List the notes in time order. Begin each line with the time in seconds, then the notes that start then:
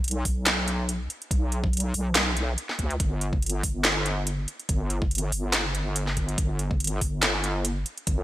Already playing: B1
0.04 closed hi-hat
0.08 closed hi-hat
0.11 closed hi-hat
0.25 B1, kick, open hi-hat
0.46 snare, clap, closed hi-hat
0.68 closed hi-hat
0.89 closed hi-hat
1.10 closed hi-hat
1.22 closed hi-hat
1.31 B1, kick, closed hi-hat
1.52 closed hi-hat
1.64 kick
1.73 closed hi-hat
1.77 closed hi-hat
1.80 closed hi-hat
1.94 B1, open hi-hat
2.15 snare, clap, closed hi-hat
2.37 closed hi-hat
2.58 closed hi-hat
2.69 snare
2.79 D2, kick, closed hi-hat
2.91 closed hi-hat
3.00 G1, kick, closed hi-hat
3.21 closed hi-hat
3.33 kick
3.42 closed hi-hat
3.46 closed hi-hat
3.49 closed hi-hat
3.63 G1, kick, open hi-hat
3.85 snare, clap, closed hi-hat
4.06 closed hi-hat
4.27 closed hi-hat
4.48 closed hi-hat
4.60 closed hi-hat
4.69 G1, kick, closed hi-hat
4.90 closed hi-hat
5.02 kick
5.11 closed hi-hat
5.15 closed hi-hat
5.18 closed hi-hat
5.32 G1, open hi-hat
5.53 snare, clap, closed hi-hat
5.75 closed hi-hat
5.96 closed hi-hat
6.07 snare
6.17 kick, closed hi-hat
6.29 closed hi-hat
6.38 G1, kick, closed hi-hat
6.59 closed hi-hat
6.71 kick
6.80 closed hi-hat
6.84 closed hi-hat
6.87 closed hi-hat
7.01 G1, kick, open hi-hat
7.23 snare, clap, closed hi-hat
7.44 closed hi-hat
7.65 closed hi-hat
7.86 closed hi-hat
7.98 closed hi-hat
8.07 G1, kick, closed hi-hat